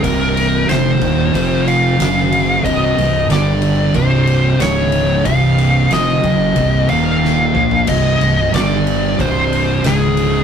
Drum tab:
CC |----------------|----------------|----------------|x---------------|
RD |x-x-x-x-x-x-x-x-|x-x-x-x-x-x-x-x-|x-x-x-x-x-x-----|x-x-x-x-x-x-x-x-|
SD |----o-------o---|----o-------o---|----o-------o---|----o-------o---|
T1 |----------------|----------------|-------------o--|----------------|
T2 |----------------|----------------|--------------o-|----------------|
FT |----------------|----------------|---------------o|----------------|
BD |o-----o-o-------|o-------o-------|o-----o-o-------|o-------o-------|